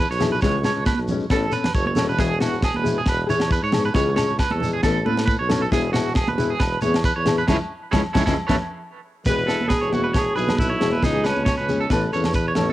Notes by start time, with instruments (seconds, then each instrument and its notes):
0.00 clean electric guitar B4
0.10 tuba B1, clean electric guitar C#5, snare
0.20 nylon-string guitar B3 E4 G#4, snare, low conga, low agogo, shekere
0.32 clean electric guitar B4
0.41 tuba C#2, nylon-string guitar E3 G#3 C#4 G#4, clean electric guitar C#5, kick, snare, shekere
0.64 nylon-string guitar G#3 C#4 G#4, clean electric guitar C#5, snare, low agogo, shekere
0.75 tuba C#2
0.86 clean electric guitar B4, kick, snare, high conga, low agogo, shekere
0.98 tuba B1
1.08 nylon-string guitar C#4, low conga, shekere
1.12 nylon-string guitar G#3
1.20 shekere
1.30 tuba A1, nylon-string guitar E3 B3 C#4 A4, clean electric guitar A4, kick, snare, low agogo, shekere
1.50 nylon-string guitar C#4 A4, clean electric guitar B4, shekere
1.54 nylon-string guitar B3
1.64 snare, low conga, low agogo, shekere
1.74 tuba F#1, clean electric guitar C#5, kick, shekere
1.86 clean electric guitar C#5, high conga
1.95 tuba E1, nylon-string guitar C#4 A4, muted nylon-string guitar stroke, snare, low conga, low agogo, shekere
2.09 clean electric guitar B4, shekere
2.17 tuba E1, nylon-string guitar E3 B3 E4 G#4, clean electric guitar G#4, kick, snare, shekere
2.39 nylon-string guitar E4 G#4, clean electric guitar F#4, snare, low agogo, shekere
2.44 nylon-string guitar B3
2.53 tuba E1, shekere
2.62 clean electric guitar G#4, kick, snare, low agogo, shekere
2.74 tuba E1, clean electric guitar B4, high conga
2.83 nylon-string guitar E4 G#4, low conga, shekere
2.98 clean electric guitar G#4
3.06 tuba E1, clean electric guitar B4, kick, snare, low agogo, shekere
3.26 tuba E2, nylon-string guitar B3 E4 G#4, clean electric guitar C#5, shekere
3.40 snare, low agogo, shekere
3.51 clean electric guitar B4, kick, shekere
3.63 tuba G#2, clean electric guitar C#5
3.72 nylon-string guitar G#4, muted nylon-string guitar stroke, snare, low conga, low agogo, shekere
3.76 nylon-string guitar B3
3.85 clean electric guitar B4
3.94 tuba C#2, nylon-string guitar E3 G#3 C#4 G#4, clean electric guitar C#5, kick, snare, shekere
4.16 nylon-string guitar G#3 C#4 G#4, clean electric guitar C#5, snare, low agogo, shekere
4.29 tuba C#2
4.39 clean electric guitar B4, kick, snare, low agogo, shekere
4.51 tuba E2, clean electric guitar A4, high conga
4.60 nylon-string guitar G#4, low conga, shekere
4.64 nylon-string guitar G#3
4.73 clean electric guitar G#4
4.83 tuba A1, nylon-string guitar E3 B3 A4, clean electric guitar A4, muted nylon-string guitar stroke, kick, snare, low agogo, shekere
5.05 tuba A2, nylon-string guitar B3 C#4 A4, clean electric guitar B4, high conga
5.17 snare, low agogo, shekere
5.26 clean electric guitar B4, kick
5.30 shekere
5.39 tuba B1, clean electric guitar C#5
5.49 nylon-string guitar B3 C#4 A4, snare, low conga, low agogo, shekere
5.62 clean electric guitar A4
5.71 tuba E1, nylon-string guitar E3 B3 E4 G#4, clean electric guitar G#4, kick, snare, shekere
5.92 nylon-string guitar B3 E4 G#4, clean electric guitar F#4, snare, low agogo, shekere
6.06 tuba E1, shekere
6.15 clean electric guitar G#4, kick, snare, low agogo, shekere
6.27 tuba E1, clean electric guitar B4, high conga
6.38 nylon-string guitar B3 E4 G#4, low conga, shekere
6.50 clean electric guitar G#4
6.60 tuba E1, clean electric guitar B4, kick, snare, low agogo, shekere
6.81 tuba E2, nylon-string guitar B3 E4 G#4, clean electric guitar C#5, high conga, shekere
6.94 snare, low agogo, shekere
7.04 clean electric guitar B4, kick, shekere
7.16 tuba E2, clean electric guitar C#5
7.26 nylon-string guitar B3 E4 G#4, snare, low conga, low agogo, shekere
7.38 clean electric guitar B4
7.47 tuba C#2, nylon-string guitar G#3 C#4 E4, clean electric guitar E4 G#4 C#5, kick, snare, low conga, low agogo, shekere
7.91 tuba C#2, nylon-string guitar G#3 C#4 E4, clean electric guitar E4 G#4 C#5, kick, snare, low conga, low agogo, shekere
8.13 tuba C#2, nylon-string guitar G#3 C#4 E4, clean electric guitar E4 G#4 C#5, kick, snare, low conga, low agogo, shekere
8.26 tuba C#2, nylon-string guitar G#3 C#4 E4, clean electric guitar E4 G#4 C#5, kick, snare, low conga, low agogo, shekere
8.47 tuba A1, nylon-string guitar B3 C#4 E4, clean electric guitar A4 B4 C#5, kick, snare, low conga, low agogo, shekere
9.25 tuba E1, nylon-string guitar E3 B3 G#4, clean electric guitar B4, alto saxophone B4, muted nylon-string guitar stroke, kick, snare, shekere
9.38 shekere
9.47 nylon-string guitar B3 E4 G#4, clean electric guitar A4, snare, low agogo, shekere
9.59 tuba E1, high conga, shekere
9.68 alto saxophone G#4, clean electric guitar B4, kick, snare, low agogo, shekere
9.81 tuba E1, clean electric guitar C#5, shekere
9.89 nylon-string guitar B3 E4 G#4, alto saxophone F#4, high conga, low conga
9.93 shekere
10.04 clean electric guitar B4
10.13 alto saxophone G#4, clean electric guitar C#5, kick, snare, low agogo, shekere
10.35 tuba B1, nylon-string guitar B3 E4 G#4, alto saxophone G#4, clean electric guitar B4, shekere
10.48 snare, high conga, low conga, low agogo, shekere
10.57 alto saxophone E4, clean electric guitar B4, kick, shekere
10.70 clean electric guitar C#5
10.80 tuba E1, nylon-string guitar G#4, snare, low conga, low agogo, shekere
10.84 nylon-string guitar B3
10.92 clean electric guitar B4, high conga
11.02 tuba C#2, nylon-string guitar E3 G#3 G#4, alto saxophone D#4, clean electric guitar G#4, muted nylon-string guitar stroke, kick, snare, shekere
11.15 shekere
11.23 nylon-string guitar G#3 C#4 G#4, alto saxophone C#4, clean electric guitar B4, snare, low agogo, shekere
11.36 tuba C#2, high conga, shekere
11.45 clean electric guitar C#5, kick, snare, low agogo, shekere
11.58 tuba C#2, clean electric guitar B4, shekere
11.69 nylon-string guitar G#3 C#4 G#4, high conga, low conga, shekere
11.80 clean electric guitar A4
11.90 tuba A1, nylon-string guitar E3 B3 C#4 A4, clean electric guitar B4, kick, snare, low agogo, shekere
12.13 tuba E2, nylon-string guitar B3 C#4 A4, clean electric guitar C#5, shekere
12.24 snare, low conga, low agogo
12.33 clean electric guitar B4, kick, shekere
12.48 clean electric guitar C#5
12.55 tuba A1, nylon-string guitar C#4 A4, snare, low conga, low agogo, shekere
12.60 nylon-string guitar B3
12.69 clean electric guitar A4, high conga